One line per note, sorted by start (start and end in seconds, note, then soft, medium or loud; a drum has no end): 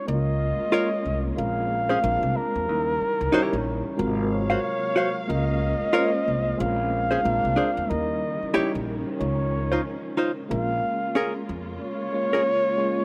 0.06 0.52 C#2 loud
0.06 0.66 G#3 medium
0.06 2.00 G#3 medium
0.06 0.66 A#3 medium
0.06 2.64 A#3 medium
0.06 1.35 C#4 medium
0.06 0.66 C#4 medium
0.06 0.14 E4 soft
0.06 1.35 F4 medium
0.06 0.67 A#4 medium
0.06 1.33 D#5 loud
0.14 0.70 F4 medium
0.60 muted upright bass stroke soft
0.70 1.34 G#3 medium
0.70 1.36 A#3 medium
0.70 1.36 C#4 medium
0.70 1.36 F4 medium
0.70 0.89 F4 medium
0.70 0.89 A#4 medium
0.70 1.37 C#5 medium
0.70 0.90 C#5 medium
1.06 1.33 C2 medium
1.36 1.94 A#1 medium
1.36 2.65 A#2 medium
1.36 2.01 C#3 medium
1.36 1.96 G#3 medium
1.36 1.96 C4 medium
1.36 1.97 C#4 medium
1.36 1.97 F4 medium
1.36 1.97 A#4 medium
1.36 2.38 F5 loud
1.89 1.99 C#4 soft
1.89 1.98 G#4 medium
1.89 1.98 C5 medium
2.01 2.20 A#1 medium
2.01 2.61 G#3 medium
2.01 2.66 G#3 medium
2.01 2.62 C4 medium
2.01 2.66 D4 medium
2.01 2.62 D4 medium
2.01 2.62 F4 medium
2.01 2.63 A#4 medium
2.23 2.33 C2 medium
2.37 4.05 A#4 loud
2.55 2.69 E2 medium
2.66 2.96 D#2 loud
2.66 3.96 C#3 medium
2.66 3.96 D#3 medium
2.66 3.96 E3 medium
2.66 2.74 F#3 medium
2.66 3.96 G3 medium
2.66 3.27 C#4 medium
2.66 3.27 D#4 medium
2.66 3.28 E4 medium
2.66 3.28 A#4 medium
2.73 3.30 G3 medium
3.01 muted upright bass stroke soft
3.21 3.31 C#2 medium
3.32 3.97 G3 medium
3.32 3.97 C#4 medium
3.32 3.98 D#4 medium
3.32 3.55 E4 medium
3.32 3.98 E4 medium
3.32 3.55 G4 medium
3.32 3.98 C#5 medium
3.32 3.56 C#5 medium
3.53 3.81 A#1 medium
3.97 4.55 G#1 loud
3.97 5.18 C3 medium
3.97 5.27 C3 medium
3.97 5.26 F#3 medium
3.97 5.17 G#3 medium
3.97 7.85 A#3 medium
3.97 5.18 F4 medium
3.97 5.18 F#4 medium
3.97 5.18 A#4 medium
3.97 6.56 F5 medium
4.32 5.25 C#5 loud
4.50 4.59 F#4 soft
4.50 4.59 C5 soft
4.50 4.58 F5 medium
4.96 5.09 F#4 medium
4.96 5.09 C5 medium
4.96 5.10 F5 medium
5.27 5.74 C#2 medium
5.27 5.87 G#3 medium
5.27 7.86 G#3 medium
5.27 5.88 A#3 medium
5.27 6.57 C#4 medium
5.27 5.88 C#4 medium
5.27 5.88 F4 medium
5.27 5.89 A#4 medium
5.27 6.62 D#5 loud
5.82 muted upright bass stroke soft
5.92 6.56 G#3 medium
5.92 6.58 A#3 medium
5.92 6.57 C#4 medium
5.92 6.10 F4 medium
5.92 6.58 F4 medium
5.92 6.10 A#4 medium
5.92 6.59 C5 medium
5.92 6.11 C#5 medium
6.28 6.55 C2 medium
6.57 7.16 A#1 loud
6.57 7.87 A#2 medium
6.57 7.23 C#3 medium
6.57 7.18 G#3 medium
6.57 7.18 C4 medium
6.57 7.18 C#4 medium
6.57 7.19 F4 medium
6.57 6.67 G#4 medium
6.57 7.91 F5 loud
6.66 7.22 A#4 medium
7.11 7.20 C#4 soft
7.11 7.20 G#4 medium
7.11 7.19 C5 medium
7.22 7.41 A#1 medium
7.22 7.83 G#3 medium
7.22 7.83 C4 medium
7.22 7.84 D4 medium
7.22 7.88 D4 medium
7.22 7.84 F4 medium
7.22 7.84 A#4 medium
7.45 7.55 C2 medium
7.56 7.69 D4 medium
7.56 7.70 G#4 medium
7.56 7.70 C5 medium
7.77 7.88 E2 medium
7.88 8.35 D#2 medium
7.88 10.47 C#3 medium
7.88 10.47 D#3 medium
7.88 9.17 E3 medium
7.88 8.48 G3 medium
7.88 9.18 G3 medium
7.88 8.48 C#4 medium
7.88 8.49 D#4 medium
7.88 8.49 E4 medium
7.88 8.49 A#4 medium
7.88 8.78 D#5 medium
8.42 muted upright bass stroke soft
8.53 9.18 G3 medium
8.53 9.18 C#4 medium
8.53 9.18 D#4 medium
8.53 8.71 E4 medium
8.53 9.19 E4 medium
8.53 8.71 G4 medium
8.53 9.20 G4 medium
8.53 8.72 C#5 medium
8.53 muted upright bass stroke soft
8.75 9.03 A#1 medium
9.08 10.14 C#5 medium
9.18 9.76 C#2 medium
9.18 10.48 F3 medium
9.18 10.39 G#3 medium
9.18 10.48 C#4 medium
9.18 10.39 C#4 medium
9.18 10.39 D#4 medium
9.18 10.40 F4 medium
9.18 10.40 C#5 medium
9.72 9.81 D#4 soft
9.72 9.81 F4 medium
9.72 9.80 C5 medium
10.17 10.30 D#4 medium
10.17 10.31 F4 medium
10.17 10.31 C5 medium
10.49 10.79 A#1 loud
10.49 13.05 C#3 medium
10.49 11.69 G#3 medium
10.49 13.05 G#3 medium
10.49 11.70 A#3 medium
10.49 13.05 A#3 medium
10.49 11.70 C#4 medium
10.49 11.70 F4 medium
10.49 13.05 F4 medium
10.49 11.70 A#4 medium
10.49 11.44 F5 loud
11.15 11.32 C#4 medium
11.15 11.32 G#4 medium
11.15 11.33 A#4 medium
11.49 11.77 F2 medium
11.81 13.05 C#5 loud
12.12 12.72 G#3 medium
12.12 12.73 A#3 medium
12.12 12.73 C#4 medium
12.12 12.73 F4 medium
12.12 12.74 C#5 medium
12.33 12.42 C#4 soft
12.33 12.42 G#4 medium
12.33 12.41 A#4 medium
12.77 13.05 G#3 medium
12.77 13.05 A#3 medium
12.77 13.05 C#4 medium
12.77 13.05 F4 medium
12.77 13.05 C#5 medium